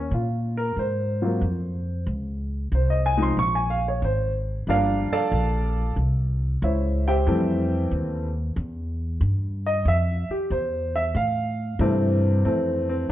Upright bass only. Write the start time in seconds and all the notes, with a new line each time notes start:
Already playing: D#2
0.11 A#2
0.77 G#2
1.41 F2
2.07 C#2
2.72 C2
3.37 A#1
4.02 G#1
4.67 G1
5.11 muted upright bass stroke
5.32 A#1
5.96 C2
6.62 C#2
7.27 F2
7.91 D#2
8.56 E2
9.21 G2
9.85 F2
10.30 muted upright bass stroke
10.50 E2
11.15 A2
11.79 G2
12.45 F2